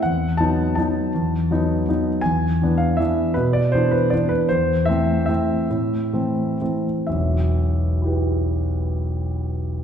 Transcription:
<<
  \new Staff \with { instrumentName = "Grand piano" } { \time 3/4 \key e \minor \tempo 4 = 155 << { fis''4 a''4 a''4~ | a''2~ a''8 r8 | gis''4. f''8 e''4 | b'8 d''8 c''8 b'8 d''8 b'8 |
c''4 e''4 e''4~ | e''2~ e''8 r8 | e''2.~ | e''2. | } \\ { r2. | r2. | r2. | r2. |
r2. | r2. | r2 <e' g' b'>4~ | <e' g' b'>2. | } >> }
  \new Staff \with { instrumentName = "Grand piano" } { \time 3/4 \key e \minor e,4 <fis b dis'>4 <fis b dis'>4 | e,4 <fis b dis'>4 <fis b dis'>4 | e,4 <e b d'>4 <e b d'>4 | b,4 <e b d'>4 <e b d'>4 |
e,4 <e a c'>4 <e a c'>4 | a,4 <e a c'>4 <e a c'>4 | <e,, b,,>2.~ | <e,, b,,>2. | }
>>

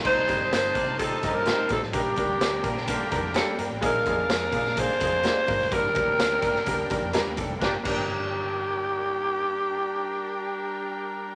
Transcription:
<<
  \new Staff \with { instrumentName = "Alto saxophone" } { \time 4/4 \key g \minor \tempo 4 = 127 c''4 c''4 a'8. bes'8. a'8 | g'2 r2 | bes'4 bes'4 c''2 | bes'2. r4 |
g'16 r16 g'2.~ g'8~ | g'1 | }
  \new Staff \with { instrumentName = "Violin section" } { \time 4/4 \key g \minor <ees' c'' a''>1 | <d' bes' g''>1 | <d' bes' f''>1 | <d' bes' g''>1 |
<d' bes' g''>8 <d' bes' g''>2.~ <d' bes' g''>8~ | <d' bes' g''>1 | }
  \new Staff \with { instrumentName = "Horn section" } { \time 4/4 \key g \minor <g ees' c''>8. <c' g' ees''>8. <d' bes' d''>8 <g ees' c''>8 <bes g' bes'>8 <g ees' c''>8. r16 | <g d' bes'>8 <g d' bes'>4 r8 <d bes g'>4. r8 | r1 | r1 |
<g d' bes'>16 r16 <g d' bes'>2.~ <g d' bes'>8~ | <g d' bes'>1 | }
  \new Staff \with { instrumentName = "Upright piano" } { \time 4/4 \key g \minor <g c' ees' g' c''>8 <g c' ees' g' c''>8 <g c' ees' g' c''>8 <g c' ees' g' c''>8 <g c' ees' g' c''>8 <g c' ees' g' ees''>8 <g c' ees' g' c''>8 <g c' ees' g' c''>8 | <g bes d' g' bes'>8 <g bes d' g' bes'>8 <g bes d' g' bes'>8 <g bes d' g' bes'>8 <g bes d' g' bes'>8 <g bes d' g' bes'>8 <g bes d' g' a'>8 <g bes d' g' bes'>8 | <aes bes d' f' aes'>8 <aes bes d' f' aes'>8 <aes bes d' f' aes'>8 <aes bes d' f' aes'>8 <aes bes d' f' aes'>8 <aes bes d' f' aes'>8 <aes bes d' f' g'>8 <aes bes d' f' bes'>8 | <g bes d' g' bes'>8 <g bes d' g' bes'>8 <g bes d' g' bes'>8 <g bes d' g' bes'>8 <g bes d' g' bes'>8 <g bes d' g' bes'>8 <g bes d' g' bes'>8 <g bes d' g' a'>8 |
<bes d' g' bes'>8 <bes d' g' bes'>2.~ <bes d' g' bes'>8~ | <bes d' g' bes'>1 | }
  \new Staff \with { instrumentName = "Fingered electric bass" } { \clef bass \time 4/4 \key g \minor c,8 g,,8 g,,8 c4 g,8. r16 bes,16 a,,16 | bes,,8 d,8 d,8 bes,4 f,8. r16 g,16 a,,16 | bes,,8 f,8 f,8 bes,4 f,8. r16 aes,16 f,,16 | g,,8 d,8 d,8 g,8 d,8 r16 f,8 ees,16 f,,8 |
g,,16 r16 g,,2.~ g,,8~ | g,,1 | }
  \new DrumStaff \with { instrumentName = "Drums" } \drummode { \time 4/4 <cymc bd>8 <hh bd>8 <hh sn>8 <hh bd>8 <hh bd>8 <hh bd>8 <hh sn>8 <hh bd>16 sn16 | <hh bd>8 <hh bd>8 <hh sn>8 <hh bd>16 sn16 <hh bd>8 <hh bd>8 <hh sn>8 hh8 | <hh bd>8 <hh bd>8 <hh sn>8 <hh bd>16 sn16 <hh bd>8 <hh bd>8 <hh sn>8 <hho bd>16 sn16 | <hh bd>8 <hh bd>8 <hh sn>8 <hh bd>16 sn16 <hh bd>8 <hh bd>8 <hh sn>8 <hh bd>8 |
<bd sn>8 <cymc bd>8 r4 r4 r4 | r4 r4 r4 r4 | }
>>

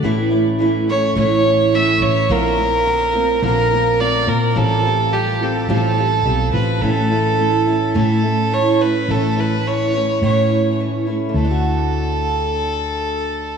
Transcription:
<<
  \new Staff \with { instrumentName = "Fiddle" } { \time 4/4 \key a \mixolydian \tempo 4 = 106 r4. cis''8 cis''4 e''8 cis''8 | bes'2 bes'4 d''8 bes'8 | a'4 g'8 a'8 a'4. b'8 | a'2 a'4 cis''8 b'8 |
a'8 b'8 cis''4 cis''4 r4 | a'1 | }
  \new Staff \with { instrumentName = "Steel-string acoustic guitar" } { \time 4/4 \key a \mixolydian <a, e a cis' e'>8 <a cis' e'>8 <e a cis' e'>8 <a cis' e'>8 <a, e a cis' e'>8 <a cis' e'>8 <e a cis' e'>8 <a cis' e'>8 | <bes, d bes c' f'>8 <bes c' f'>8 <d bes c' f'>8 <bes c' f'>8 <bes, d bes c' f'>8 <bes c' f'>8 <d bes c' f'>8 <bes c' f'>8 | <a, f g c' f'>8 <g c' f'>8 <f g c' f'>8 <g c' f'>8 <a, f g c' f'>8 <g c' f'>8 <f g c' f'>8 <g c' f'>8 | <a, e a cis' e'>8 <a cis' e'>8 <e a cis' e'>8 <a cis' e'>8 <a, e a cis' e'>8 <a cis' e'>8 <e a cis' e'>8 <a cis' e'>8 |
<a, e a cis' e'>8 <a cis' e'>8 <e a cis' e'>8 <a cis' e'>8 <a, e a cis' e'>8 <a cis' e'>8 <e a cis' e'>8 <a cis' e'>8 | <d a d' fis'>1 | }
  \new Staff \with { instrumentName = "Fingered electric bass" } { \clef bass \time 4/4 \key a \mixolydian a,,2 a,,4. a,,8 | bes,,2 bes,,4. bes,8 | a,,2 a,,4 b,,8 a,,8 | a,,2 a,2 |
a,,2 a,2 | d,1 | }
>>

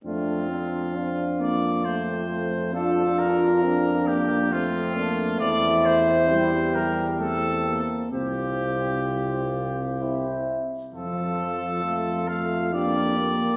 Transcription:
<<
  \new Staff \with { instrumentName = "Trumpet" } { \time 3/4 \key bes \lydian \tempo 4 = 67 f'4. d''8 c''4 | a'8 bes'4 g'8 f'4 | d''8 c''4 bes'8 a'8 r8 | g'2~ g'8 r8 |
a'4. f''8 d''4 | }
  \new Staff \with { instrumentName = "Flugelhorn" } { \time 3/4 \key bes \lydian c'4 f'2 | d'4 bes4 c'8 d'8 | e'4 g'4. r8 | f'2 e'8 r8 |
f'4 f'4 g'4 | }
  \new Staff \with { instrumentName = "Trombone" } { \time 3/4 \key bes \lydian d'8 c'8 d'4 c'4 | f'4 d'4 c'8 bes8 | c'4 e'8 r8 c'4 | c'2~ c'8 r8 |
r4 f'4 d'8 bes8 | }
  \new Staff \with { instrumentName = "French horn" } { \time 3/4 \key bes \lydian a8 d'8 c'8 bes8 a8 a8 | d'4 c'8 bes8 a4~ | a4 g8 g8 a8 bes8 | c'4. r8 c'8 r8 |
f4 a8 a8 bes4 | }
  \new Staff \with { instrumentName = "Tuba" } { \clef bass \time 3/4 \key bes \lydian f,2.~ | f,2. | e,2~ e,8 r8 | c,2~ c,8 r8 |
f,2. | }
>>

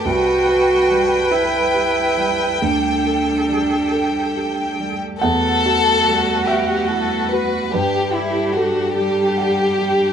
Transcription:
<<
  \new Staff \with { instrumentName = "String section" } { \time 6/8 \key e \minor \tempo 4. = 48 << { <a' b'>2. | <g' a'>2. | <b' fis''>2. | <d' a'>2. | } \\ { g2.~ | g2. | g2.~ | g2. | } >> }
  \new Staff \with { instrumentName = "Felt piano" } { \time 6/8 \key e \minor << { r2. | r2. | fis''4. e''4. | b'2~ b'8 r8 | } \\ { c,8 b'8 g8 b'8 g'8 g8 | d,8 a'8 g8 a'8 g'8 g8 | e,8 fis'8 g8 fis''8 e'8 fis'8 | g,8 g'8 a'8 g'8 fis''8 g'8 | } >> }
  \new Staff \with { instrumentName = "Viola" } { \time 6/8 \key e \minor b'2. | a'2~ a'8. r16 | fis'2. | g'4. g'4. | }
  \new Staff \with { instrumentName = "Violin section" } { \time 6/8 \key e \minor g''2.~ | g''2~ g''8. r16 | a'4. g'8 a'8 b'8 | g'8 e'8 fis'8 g'4. | }
  \new Staff \with { instrumentName = "Cello" } { \time 6/8 \key e \minor fis'4. e'4. | d'2~ d'8 r8 | a2. | g4. g4. | }
>>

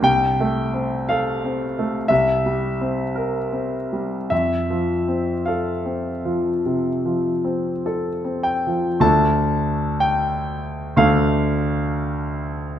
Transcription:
<<
  \new Staff \with { instrumentName = "Grand piano" } { \time 4/4 \key f \major \tempo 4 = 58 g''4 f''4 e''2 | e''4 f''2 r8 g''8 | \key d \minor a''4 g''4 f''2 | }
  \new Staff \with { instrumentName = "Grand piano" } { \time 4/4 \key f \major \tuplet 3/2 { c,8 a8 c'8 a'8 c'8 a8 c,8 g8 c'8 bes'8 c'8 g8 } | \tuplet 3/2 { f,8 f8 c'8 a'8 c'8 f8 c8 f8 c'8 a'8 c'8 f8 } | \key d \minor <d, a d' a'>2 <d, a d' a'>2 | }
>>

